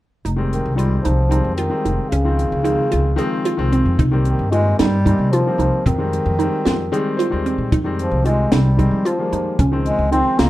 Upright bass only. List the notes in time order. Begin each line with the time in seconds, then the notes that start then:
0.25 F1
0.65 C2
1.05 C2
1.44 F2
1.85 F1
2.12 C#2
2.52 C#2
2.93 C#2
3.59 C2
3.85 F2
3.99 C2
4.39 G2
4.80 G2
5.19 C3
5.58 C2
5.86 F2
6.26 F2
6.66 F2
7.33 D#2
7.58 A#2
7.73 F2
8.11 C2
8.52 C2
8.91 F3
9.32 F2
9.59 C#2
9.98 C#2
10.39 C#2